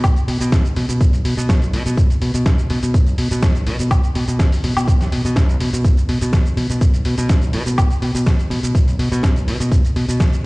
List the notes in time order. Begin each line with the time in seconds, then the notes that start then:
0.04 B1, kick, closed hi-hat, high woodblock, shaker
0.16 closed hi-hat, shaker
0.28 B2, open hi-hat
0.41 B2, closed hi-hat, shaker
0.52 B1, kick, snare, closed hi-hat, shaker
0.65 closed hi-hat, shaker
0.76 B2, open hi-hat
0.89 B2, closed hi-hat, shaker
1.01 B1, kick, closed hi-hat, shaker
1.13 closed hi-hat, shaker
1.25 B2, open hi-hat
1.37 B2, closed hi-hat, shaker
1.49 B1, kick, snare, closed hi-hat, shaker
1.62 closed hi-hat, shaker
1.73 B2, open hi-hat
1.86 B2, closed hi-hat, shaker
1.97 B1, kick, closed hi-hat, shaker
2.10 closed hi-hat, shaker
2.22 B2, open hi-hat
2.34 B2, closed hi-hat, shaker
2.46 B1, kick, snare, closed hi-hat, shaker
2.58 closed hi-hat, shaker
2.70 B2, open hi-hat
2.83 B2, closed hi-hat, shaker
2.94 B1, kick, closed hi-hat, shaker
3.07 closed hi-hat, shaker
3.18 B2, open hi-hat
3.31 B2, closed hi-hat, shaker
3.42 B1, kick, snare, closed hi-hat, shaker
3.55 closed hi-hat, shaker
3.67 B2, open hi-hat
3.79 B2, closed hi-hat, shaker
3.91 B1, kick, closed hi-hat, high woodblock, shaker
4.04 closed hi-hat, shaker
4.15 B2, open hi-hat
4.28 B2, closed hi-hat, shaker
4.39 B1, kick, snare, closed hi-hat, shaker
4.52 open hi-hat, shaker
4.64 B2, open hi-hat
4.77 B2, closed hi-hat, high woodblock, shaker
4.88 B1, kick, closed hi-hat, shaker
5.01 snare, closed hi-hat, shaker
5.12 B2, open hi-hat
5.25 B2, closed hi-hat, shaker
5.36 B1, kick, snare, closed hi-hat, shaker
5.49 closed hi-hat, shaker
5.60 B2, open hi-hat
5.73 B2, closed hi-hat, shaker
5.84 B1, kick, closed hi-hat, shaker
5.97 closed hi-hat, shaker
6.09 B2, open hi-hat
6.21 B2, closed hi-hat, shaker
6.33 B1, kick, snare, closed hi-hat, shaker
6.46 closed hi-hat, shaker
6.57 B2, open hi-hat
6.70 B2, closed hi-hat, shaker
6.81 B1, kick, closed hi-hat, shaker
6.94 closed hi-hat, shaker
7.05 B2, open hi-hat
7.18 B2, closed hi-hat, shaker
7.29 B1, kick, snare, closed hi-hat, shaker
7.42 closed hi-hat, shaker
7.53 B2, open hi-hat
7.66 B2, closed hi-hat, shaker
7.78 B1, kick, closed hi-hat, high woodblock, shaker
7.90 closed hi-hat, shaker
8.02 B2, open hi-hat
8.15 B2, closed hi-hat, shaker
8.26 B1, kick, snare, closed hi-hat, shaker
8.39 closed hi-hat, shaker
8.50 B2, open hi-hat
8.63 B2, closed hi-hat, shaker
8.75 B1, kick, closed hi-hat, shaker
8.88 closed hi-hat, shaker
8.99 B2, open hi-hat
9.12 B2, closed hi-hat, shaker
9.23 B1, kick, snare, closed hi-hat, shaker
9.36 closed hi-hat, shaker
9.48 B2, open hi-hat
9.60 B2, closed hi-hat, shaker
9.72 B1, kick, closed hi-hat, shaker
9.85 closed hi-hat, shaker
9.96 B2, open hi-hat
10.08 B2, closed hi-hat, shaker
10.20 B1, kick, snare, closed hi-hat, shaker
10.33 closed hi-hat, shaker